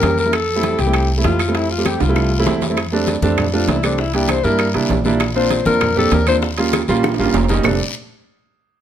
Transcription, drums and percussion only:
0.02 high bongo, low bongo, high conga, high timbale, low timbale, short guiro
0.18 short guiro
0.33 high bongo, high conga, high timbale, long guiro, claves
0.48 high conga
0.63 high bongo, high conga, high timbale, low timbale, short guiro
0.78 high conga, high timbale, short guiro
0.94 high bongo, high conga, high timbale, long guiro, claves
1.09 high conga
1.24 high bongo, low bongo, high conga, high timbale, low timbale, short guiro
1.39 high timbale, short guiro, claves
1.55 high bongo, high conga, high timbale, long guiro
1.70 high bongo
1.85 high bongo, high conga, high timbale, low timbale, short guiro, claves
2.00 high bongo, high conga, high timbale, short guiro
2.16 high bongo, high timbale, long guiro, claves
2.31 high bongo, high conga
2.46 high bongo, low bongo, high conga, low timbale, short guiro
2.61 high conga, low timbale, short guiro
2.77 high bongo, high timbale, long guiro, claves
2.92 high conga
3.07 high bongo, high conga, high timbale, low timbale, short guiro
3.22 high bongo, high conga, short guiro
3.38 high bongo, high conga, low conga, high timbale, long guiro, claves
3.54 high bongo
3.68 high bongo, low bongo, high conga, high timbale, low timbale, short guiro
3.83 high bongo, high timbale, short guiro, claves
3.98 high bongo, high conga, long guiro
4.14 high conga, high timbale
4.28 high bongo, high conga, high timbale, low timbale, short guiro, claves
4.44 high bongo, high conga, short guiro
4.59 high bongo, high conga, high timbale, long guiro, claves
4.74 high bongo, high conga, high timbale
4.89 high bongo, low bongo, high conga, low timbale, short guiro
5.04 high bongo, high conga, short guiro
5.20 high bongo, high conga, high timbale, long guiro, claves
5.50 high bongo, high conga, high timbale, low timbale, short guiro
5.65 high bongo, high conga, short guiro
5.81 high bongo, high conga, low conga, high timbale, long guiro, claves
5.96 high bongo, high conga, low conga
6.12 high bongo, low bongo, high conga, high timbale, low timbale, short guiro
6.27 high bongo, high timbale, short guiro, claves
6.42 high bongo, high conga, long guiro
6.58 high conga, high timbale
6.73 high bongo, high conga, high timbale, low timbale, short guiro, claves
6.88 high bongo, high conga, short guiro
7.03 high bongo, high conga, high timbale, long guiro, claves
7.14 high timbale
7.24 high timbale
7.33 low bongo, low timbale, short guiro
7.44 low timbale
7.49 low bongo, low conga, short guiro
7.54 low timbale
7.63 low bongo, low conga, low timbale, long guiro, claves

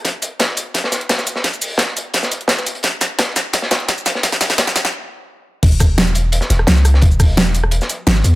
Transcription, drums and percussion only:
0.05 kick, snare, closed hi-hat
0.22 closed hi-hat, shaker
0.40 kick, snare, closed hi-hat
0.57 closed hi-hat, shaker
0.74 kick, snare, closed hi-hat
0.84 snare
0.92 snare, closed hi-hat, shaker
1.01 closed hi-hat
1.09 kick, snare, closed hi-hat
1.18 snare, shaker
1.27 closed hi-hat, shaker
1.36 snare
1.44 kick, snare, closed hi-hat
1.53 shaker
1.61 closed hi-hat, open hi-hat, shaker
1.78 kick, snare, closed hi-hat
1.97 closed hi-hat, shaker
2.14 kick, snare, closed hi-hat
2.23 snare, shaker
2.31 closed hi-hat, shaker
2.41 closed hi-hat
2.48 kick, snare, closed hi-hat
2.58 snare, shaker
2.67 closed hi-hat, shaker
2.75 closed hi-hat
2.83 kick, snare, closed hi-hat
3.01 snare, closed hi-hat, shaker
3.19 kick, snare, closed hi-hat
3.36 snare, closed hi-hat, shaker
3.53 kick, snare, closed hi-hat
3.62 snare
3.71 snare, closed hi-hat, shaker
3.80 closed hi-hat
3.88 kick, snare, closed hi-hat
3.98 shaker
4.06 snare, closed hi-hat, shaker
4.15 snare
4.23 kick, snare, closed hi-hat
4.32 snare, closed hi-hat, shaker
4.41 snare, closed hi-hat, open hi-hat, shaker
4.50 snare, closed hi-hat
4.58 kick, snare, closed hi-hat
4.67 snare, shaker
4.76 snare, closed hi-hat, shaker
4.85 snare
5.63 kick, closed hi-hat, crash
5.72 shaker
5.80 kick, cross-stick, closed hi-hat, shaker
5.98 snare, closed hi-hat
6.07 shaker
6.15 closed hi-hat, open hi-hat, shaker
6.32 closed hi-hat
6.41 snare, shaker
6.50 snare, closed hi-hat, shaker
6.59 cross-stick
6.67 snare, closed hi-hat
6.76 snare, shaker
6.85 cross-stick, closed hi-hat, open hi-hat, shaker
6.94 snare
7.02 kick, closed hi-hat
7.11 shaker
7.20 kick, cross-stick, closed hi-hat, open hi-hat, shaker
7.37 snare, closed hi-hat
7.46 shaker
7.55 closed hi-hat, open hi-hat, shaker
7.64 cross-stick
7.71 closed hi-hat
7.81 snare, shaker
7.89 closed hi-hat, shaker
8.07 snare, closed hi-hat
8.16 snare, shaker
8.24 closed hi-hat, open hi-hat, shaker

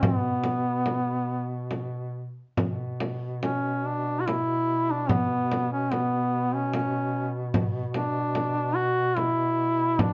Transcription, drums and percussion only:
0.03 frame drum
0.44 frame drum
0.86 frame drum
1.71 frame drum
2.57 frame drum
3.00 frame drum
3.43 frame drum
4.28 frame drum
5.09 frame drum
5.52 frame drum
5.92 frame drum
6.74 frame drum
7.54 frame drum
7.94 frame drum
8.35 frame drum
9.17 frame drum
9.99 frame drum

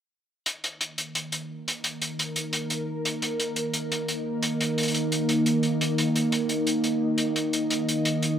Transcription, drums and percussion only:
0.46 closed hi-hat
0.64 closed hi-hat
0.81 closed hi-hat
0.98 closed hi-hat
1.15 closed hi-hat
1.32 closed hi-hat
1.68 closed hi-hat
1.84 closed hi-hat
2.02 closed hi-hat
2.19 closed hi-hat
2.36 closed hi-hat
2.53 closed hi-hat
2.70 closed hi-hat
3.05 closed hi-hat
3.22 closed hi-hat
3.40 closed hi-hat
3.56 closed hi-hat
3.74 closed hi-hat
3.92 closed hi-hat
4.08 closed hi-hat
4.43 closed hi-hat
4.61 closed hi-hat
4.78 closed hi-hat
4.83 closed hi-hat
4.88 closed hi-hat
4.92 closed hi-hat
4.94 closed hi-hat
5.12 closed hi-hat
5.29 closed hi-hat
5.46 closed hi-hat
5.63 closed hi-hat
5.81 closed hi-hat
5.98 closed hi-hat
6.16 closed hi-hat
6.32 closed hi-hat
6.49 closed hi-hat
6.67 closed hi-hat
6.84 closed hi-hat
7.18 closed hi-hat
7.36 closed hi-hat
7.53 closed hi-hat
7.70 closed hi-hat
7.89 closed hi-hat
8.05 closed hi-hat
8.22 closed hi-hat

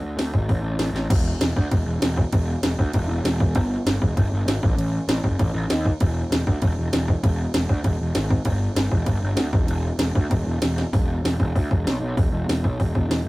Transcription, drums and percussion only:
0.19 snare, open hi-hat
0.34 kick
0.49 kick, open hi-hat
0.79 snare, open hi-hat
0.96 snare
1.10 kick, crash
1.41 snare, crash
1.57 kick
1.71 kick, crash
2.02 snare, crash
2.17 kick
2.32 kick, crash
2.63 snare, crash
2.79 kick
2.93 kick, crash
3.25 snare, crash
3.40 kick
3.55 kick, crash
3.87 snare, crash
4.02 kick
4.17 kick, crash
4.48 snare, crash
4.63 kick
4.79 crash
5.09 snare, crash
5.24 kick
5.39 kick, crash
5.70 snare, crash
5.85 kick
6.00 kick, crash
6.32 snare, crash
6.47 kick
6.62 kick, crash
6.93 snare, crash
7.08 kick
7.24 kick, crash
7.54 snare, crash
7.69 kick
7.84 kick, crash
8.15 snare, crash
8.30 kick
8.45 kick, crash
8.76 snare, crash
8.92 kick
9.06 kick, crash
9.37 snare, crash
9.53 kick
9.68 crash
9.99 snare, crash
10.15 kick
10.31 kick, crash
10.62 snare, crash
10.78 snare
10.93 kick, open hi-hat
11.25 snare, open hi-hat
11.40 kick
11.56 kick, open hi-hat
11.71 kick
11.87 snare, open hi-hat
12.17 kick, open hi-hat
12.49 snare, open hi-hat
12.64 kick
12.80 kick, open hi-hat
12.95 kick
13.11 snare, open hi-hat

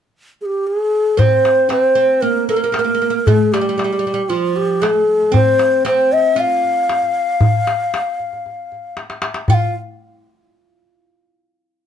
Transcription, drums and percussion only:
1.19 darbuka dum
1.45 darbuka tek
1.70 darbuka tek
2.22 darbuka ka
2.48 darbuka ka
2.74 darbuka tek
2.88 darbuka ka
3.27 darbuka dum
3.54 darbuka tek
3.79 darbuka tek
4.06 darbuka ka
4.31 darbuka ka
4.57 darbuka ka
4.83 darbuka tek
4.96 darbuka ka
5.22 darbuka ka
5.34 darbuka dum
5.59 darbuka tek
5.86 darbuka tek
6.12 darbuka ka
6.38 darbuka ka
6.64 darbuka ka
6.89 darbuka tek
7.02 darbuka ka
7.41 darbuka dum
7.67 darbuka tek
7.94 darbuka tek
8.20 darbuka ka
8.33 darbuka ka
8.46 darbuka ka
8.72 darbuka ka
8.97 darbuka tek
9.10 darbuka ka
9.22 darbuka tek
9.34 darbuka ka
9.48 darbuka dum

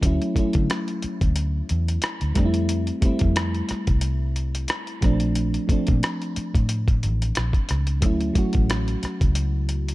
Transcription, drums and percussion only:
0.03 kick, closed hi-hat
0.22 closed hi-hat
0.36 kick, closed hi-hat
0.53 kick, closed hi-hat
0.70 cross-stick, closed hi-hat
0.88 closed hi-hat
1.02 closed hi-hat
1.21 kick, closed hi-hat
1.36 closed hi-hat
1.69 closed hi-hat
1.88 closed hi-hat
2.02 cross-stick, closed hi-hat
2.21 closed hi-hat
2.35 kick, cross-stick, closed hi-hat
2.54 closed hi-hat
2.69 closed hi-hat
2.87 closed hi-hat
3.02 kick, closed hi-hat
3.19 kick, closed hi-hat
3.36 cross-stick, closed hi-hat
3.55 closed hi-hat
3.69 cross-stick, closed hi-hat
3.87 kick, closed hi-hat
4.01 closed hi-hat
4.36 closed hi-hat
4.55 closed hi-hat
4.68 cross-stick, closed hi-hat
4.87 closed hi-hat
5.02 kick, cross-stick, closed hi-hat
5.20 closed hi-hat
5.35 closed hi-hat
5.54 closed hi-hat
5.69 kick, closed hi-hat
5.87 kick, closed hi-hat
6.03 cross-stick, closed hi-hat
6.22 closed hi-hat
6.36 closed hi-hat
6.55 kick, closed hi-hat
6.69 closed hi-hat
6.88 kick, closed hi-hat
7.03 closed hi-hat
7.22 closed hi-hat
7.35 cross-stick, closed hi-hat
7.53 kick, closed hi-hat
7.69 cross-stick, closed hi-hat
7.87 closed hi-hat
8.02 kick, closed hi-hat
8.21 closed hi-hat
8.35 kick, closed hi-hat
8.53 kick, closed hi-hat
8.70 cross-stick, closed hi-hat
8.88 closed hi-hat
9.03 cross-stick, closed hi-hat
9.21 kick, closed hi-hat
9.35 closed hi-hat
9.69 closed hi-hat
9.88 closed hi-hat

